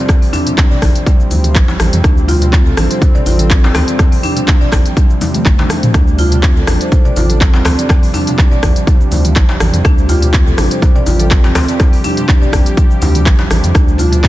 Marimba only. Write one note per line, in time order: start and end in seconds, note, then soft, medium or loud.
0.33 0.45 D4 loud
0.58 0.65 D4 medium
0.71 0.81 D5 loud
2.04 2.16 D4 medium
2.28 2.40 F4 loud
2.53 2.60 C4 medium
2.66 2.72 A4 medium
2.77 2.89 D4 medium
2.91 2.97 C5 medium
3.15 3.25 D5 medium
3.26 3.38 F4 medium
3.39 3.49 A4 medium
3.51 3.62 C4 medium
3.64 3.70 C4 medium
3.75 3.87 C4 loud
3.88 3.99 D5 medium
4.24 4.35 D4 loud
4.48 4.55 D4 medium
4.61 4.71 D5 loud
5.34 5.45 A3 medium
5.59 5.69 D4 medium
5.94 6.06 D4 medium
6.19 6.31 F4 loud
6.43 6.50 C4 medium
6.56 6.62 A4 medium
6.67 6.79 D4 medium
6.81 6.87 C5 medium
7.05 7.15 D5 medium
7.16 7.28 F4 medium
7.29 7.40 A4 medium
7.41 7.52 C4 medium
7.54 7.60 C4 medium
7.65 7.77 C4 loud
7.78 7.89 D5 medium
8.14 8.26 D4 loud
8.38 8.45 D4 medium
8.51 8.62 D5 loud
9.85 9.96 D4 medium
10.09 10.21 F4 loud
10.33 10.41 C4 medium
10.46 10.53 A4 medium
10.58 10.70 D4 medium
10.71 10.77 C5 medium
10.96 11.06 D5 loud
11.07 11.19 F4 medium
11.20 11.30 A4 medium
11.31 11.43 C4 medium
11.44 11.50 C4 medium
11.55 11.67 C4 loud
11.69 11.79 D5 medium
12.04 12.16 D4 loud
12.29 12.36 D4 medium
12.42 12.52 D5 loud
13.02 13.14 D4 medium
13.75 13.87 D4 medium
13.99 14.11 F4 loud
14.24 14.28 C4 medium